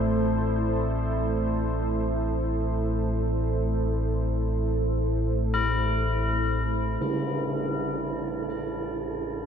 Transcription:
Already playing: A1 A2 A3 D4 E4 A4 C5
5.54 E4
7.01 A1 A2 A4, tam-tam

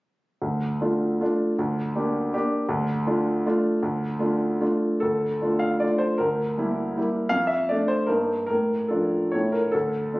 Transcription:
0.42 D2
0.81 A3 D4 F4
1.21 A3 D4 F4
1.59 D2
1.95 A#3 D4 G4
2.34 A#3 D4 G4
2.69 D2
3.07 A3 D4 F4
3.46 A3 D4 F4
3.83 D2
4.19 A3 D4 F4
4.61 A3 D4 F4
5.00 D2 A4
5.42 A3 D4 F4
5.59 F5
5.80 A3 D4 F4 D5
5.98 C5
6.18 D2 A#4
6.58 G3 A#3 E4
6.97 G3 A#3 E4
7.29 F2 F5
7.47 E5
7.69 A3 D4 D5
7.88 C5
8.06 G2 G3 A#3 D#4 A#4
8.47 A2 A#4
8.88 F3 D4 F4 A4
9.32 A2 A3 E4 C#5
9.52 A#4
9.72 D2 A4
10.14 A3 D4 F4

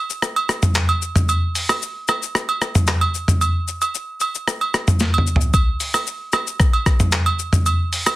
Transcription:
0.10 shaker
0.22 cross-stick, shaker
0.36 high agogo
0.49 cross-stick, shaker
0.63 mid tom, shaker
0.74 cross-stick, clap, shaker
0.89 high agogo
1.02 shaker
1.16 mid tom, shaker
1.29 high agogo, shaker
1.55 open hi-hat, shaker
1.69 cross-stick, high agogo, shaker
1.82 shaker
2.08 cross-stick, high agogo, shaker
2.23 shaker
2.35 cross-stick, shaker
2.49 high agogo
2.62 cross-stick, shaker
2.75 mid tom, shaker
2.87 cross-stick, clap, shaker
3.01 high agogo
3.14 shaker
3.28 mid tom, shaker
3.41 high agogo, shaker
3.68 shaker
3.81 high agogo, shaker
3.95 shaker
4.20 high agogo, shaker
4.35 shaker
4.48 cross-stick, shaker
4.61 high agogo
4.74 cross-stick, shaker
4.88 mid tom, shaker
4.99 snare, shaker
5.14 high agogo
5.18 mid tom
5.27 shaker
5.36 floor tom
5.41 shaker
5.54 kick, high agogo, shaker
5.80 open hi-hat, shaker
5.94 cross-stick, high agogo, shaker
6.07 shaker
6.32 cross-stick, high agogo, shaker
6.47 shaker
6.60 kick, cross-stick, shaker
6.73 high agogo
6.86 kick, cross-stick, shaker
7.00 mid tom, shaker
7.12 cross-stick, clap, shaker
7.26 high agogo
7.39 shaker
7.53 mid tom, shaker
7.66 high agogo, shaker
7.93 open hi-hat, shaker
8.06 cross-stick, high agogo, shaker

